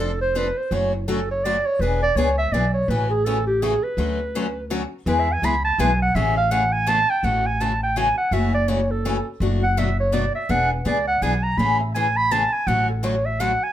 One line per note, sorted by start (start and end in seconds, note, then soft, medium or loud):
0.00 0.50 F1 medium
0.00 0.10 C4 medium
0.00 0.10 D4 medium
0.00 0.10 A4 medium
0.00 0.21 A4 medium
0.21 0.39 C5 medium
0.35 0.46 F3 medium
0.35 0.46 C4 medium
0.35 0.47 D4 medium
0.35 0.47 A4 loud
0.35 0.59 B4 medium
0.58 0.75 C5 medium
0.71 1.58 F#1 medium
0.71 0.92 D3 medium
0.71 0.92 F#3 medium
0.71 0.92 A3 medium
0.71 0.92 C#4 medium
0.71 0.92 F#4 medium
0.71 0.94 C#5 medium
0.95 1.09 E4 soft
1.08 1.19 D3 medium
1.08 1.19 F#3 medium
1.08 1.19 A3 medium
1.08 1.19 C#4 medium
1.08 1.19 F#4 medium
1.08 1.30 A4 medium
1.31 1.46 C#5 medium
1.44 1.56 D3 medium
1.44 1.56 F#3 medium
1.44 1.56 A3 medium
1.44 1.56 C#4 medium
1.44 1.56 F#4 loud
1.44 1.68 D5 loud
1.66 1.82 C#5 medium
1.79 2.09 E1 medium
1.79 2.02 E3 medium
1.79 2.02 B3 medium
1.79 2.02 D4 medium
1.79 2.02 G#4 medium
1.79 2.02 B4 medium
2.03 2.18 D5 loud
2.15 2.47 C#2 medium
2.15 2.28 E3 medium
2.15 2.28 B3 medium
2.15 2.28 D4 medium
2.15 2.28 G#4 loud
2.15 2.37 C#5 medium
2.38 2.55 E5 loud
2.52 2.83 B1 medium
2.52 2.64 E3 medium
2.52 2.64 B3 medium
2.52 2.64 D4 medium
2.52 2.65 G#4 medium
2.52 2.73 D5 medium
2.73 2.91 C#5 medium
2.88 3.75 A1 medium
2.88 3.10 C#3 medium
2.88 3.10 E3 medium
2.88 3.10 A3 medium
2.88 3.10 C#4 medium
2.88 3.11 F#4 medium
2.88 3.10 B4 medium
3.10 3.27 G#4 medium
3.25 3.37 C#3 medium
3.25 3.37 E3 medium
3.25 3.37 A3 medium
3.25 3.37 C#4 medium
3.25 3.37 F#4 medium
3.25 3.46 A4 medium
3.47 3.63 G4 medium
3.62 3.73 C#3 medium
3.62 3.73 E3 medium
3.62 3.73 A3 medium
3.62 3.73 C#4 medium
3.62 3.73 F#4 loud
3.62 3.85 G#4 medium
3.83 4.70 B4 medium
3.97 4.84 D2 medium
3.97 4.18 D3 medium
3.97 4.18 F#3 medium
3.97 4.19 A3 medium
3.97 4.19 C#4 medium
3.97 4.19 F#4 medium
4.35 4.45 D3 medium
4.35 4.46 F#3 medium
4.35 4.46 A3 medium
4.35 4.46 C#4 medium
4.35 4.46 F#4 medium
4.70 4.81 D3 medium
4.70 4.81 F#3 medium
4.70 4.81 A3 medium
4.70 4.81 C#4 loud
4.70 4.82 F#4 medium
5.06 5.35 E2 medium
5.06 5.27 E3 medium
5.06 5.27 G#3 medium
5.06 5.27 B3 medium
5.06 5.27 E4 medium
5.06 5.27 G#4 medium
5.06 5.21 B4 medium
5.20 5.34 E5 medium
5.32 5.46 G#5 loud
5.42 5.73 C#2 medium
5.42 5.54 E3 medium
5.42 5.54 G#3 medium
5.42 5.54 B3 loud
5.42 5.54 E4 medium
5.42 5.54 G#4 medium
5.42 5.64 B5 loud
5.65 5.82 A5 loud
5.78 6.09 B1 medium
5.78 5.90 E3 medium
5.78 5.90 G#3 medium
5.78 5.90 B3 medium
5.78 5.90 E4 loud
5.78 5.90 G#4 loud
5.78 6.01 G#5 loud
6.02 6.17 F#5 medium
6.15 7.02 A1 medium
6.15 6.36 C#3 medium
6.15 6.36 E3 medium
6.15 6.36 A3 medium
6.15 6.36 C#4 medium
6.15 6.36 G#4 medium
6.15 6.36 E5 medium
6.37 6.53 F5 loud
6.51 6.62 C#3 medium
6.51 6.62 E3 loud
6.51 6.62 A3 medium
6.51 6.62 C#4 medium
6.51 6.62 G#4 loud
6.51 6.74 F#5 medium
6.72 6.90 G#5 loud
6.87 6.98 C#3 medium
6.87 6.98 E3 medium
6.87 6.98 A3 loud
6.87 6.98 C#4 medium
6.87 6.98 G#4 medium
6.87 7.11 A5 loud
7.10 7.26 G5 loud
7.23 8.10 A1 medium
7.23 7.44 C#3 medium
7.23 7.44 E3 medium
7.23 7.44 A3 medium
7.23 7.44 C#4 medium
7.23 7.44 F#4 medium
7.23 7.48 F#5 medium
7.46 7.63 G#5 medium
7.60 7.71 C#3 medium
7.60 7.71 E3 medium
7.60 7.71 A3 medium
7.60 7.71 C#4 medium
7.60 7.71 F#4 medium
7.60 7.82 A5 medium
7.83 7.98 G5 medium
7.96 8.07 C#3 medium
7.96 8.07 E3 medium
7.96 8.07 A3 medium
7.96 8.07 C#4 loud
7.96 8.08 F#4 medium
7.96 8.17 G#5 medium
8.18 8.35 F#5 medium
8.31 9.19 F#1 medium
8.31 8.53 C#3 medium
8.31 8.53 E3 medium
8.31 8.53 A3 medium
8.31 8.53 C#4 medium
8.31 8.53 F#4 medium
8.31 8.54 E5 medium
8.54 8.70 D5 medium
8.68 8.79 C#3 medium
8.68 8.79 E3 medium
8.68 8.79 A3 medium
8.68 8.79 C#4 medium
8.68 8.80 F#4 loud
8.68 8.92 C#5 medium
8.91 9.27 A4 medium
9.05 9.16 C#3 medium
9.05 9.16 E3 medium
9.05 9.16 A3 medium
9.05 9.16 C#4 loud
9.05 9.16 F#4 medium
9.40 10.28 F#1 medium
9.40 9.62 B2 medium
9.40 9.62 F#3 medium
9.40 9.62 A3 medium
9.40 9.62 D4 medium
9.40 9.62 F#4 medium
9.63 9.80 F#5 loud
9.77 9.88 B2 medium
9.77 9.88 F#3 medium
9.77 9.88 A3 medium
9.77 9.88 D4 medium
9.77 9.88 F#4 medium
9.77 9.99 E5 medium
10.00 10.15 C#5 medium
10.12 10.24 B2 medium
10.12 10.24 F#3 loud
10.12 10.24 A3 medium
10.12 10.24 D4 medium
10.12 10.24 F#4 medium
10.12 10.35 D5 medium
10.35 10.52 E5 medium
10.49 10.79 E1 medium
10.49 10.70 E3 medium
10.49 10.70 B3 medium
10.49 10.70 D4 medium
10.49 10.70 G#4 medium
10.49 10.72 F#5 loud
10.72 10.88 B4 medium
10.85 11.16 C#2 medium
10.85 10.96 E3 medium
10.85 10.97 B3 medium
10.85 10.97 D4 medium
10.85 10.97 G#4 medium
10.85 11.07 D5 medium
11.07 11.24 F#5 loud
11.22 11.53 B1 medium
11.22 11.33 E3 medium
11.22 11.33 B3 medium
11.22 11.33 D4 medium
11.22 11.34 G#4 medium
11.22 11.45 G#5 medium
11.43 11.59 A#5 medium
11.57 12.45 A1 medium
11.57 11.79 C#3 medium
11.57 11.79 E3 medium
11.57 11.79 A3 medium
11.57 11.80 C#4 medium
11.57 11.80 G#4 medium
11.57 11.80 B5 loud
11.80 11.96 E5 medium
11.94 12.06 C#3 medium
11.94 12.06 E3 medium
11.94 12.06 A3 medium
11.94 12.06 C#4 medium
11.94 12.06 G#4 medium
11.94 12.18 G#5 loud
12.17 12.33 B5 loud
12.31 12.42 C#3 medium
12.31 12.42 E3 medium
12.31 12.42 A3 medium
12.31 12.42 C#4 medium
12.31 12.42 G#4 medium
12.31 12.54 A5 loud
12.53 12.68 G#5 medium
12.67 13.54 A1 medium
12.67 12.88 D3 medium
12.67 12.88 F#3 medium
12.67 12.88 A3 medium
12.67 12.88 C#4 medium
12.67 12.89 F#4 medium
12.67 12.89 F#5 medium
12.90 13.05 A4 medium
13.03 13.14 D3 medium
13.03 13.14 F#3 medium
13.03 13.14 A3 medium
13.03 13.14 C#4 medium
13.03 13.14 F#4 medium
13.03 13.27 C#5 medium
13.26 13.42 E5 loud
13.40 13.51 D3 medium
13.40 13.51 F#3 medium
13.40 13.51 A3 medium
13.40 13.51 C#4 medium
13.40 13.51 F#4 loud
13.40 13.65 F#5 medium
13.63 13.72 G#5 loud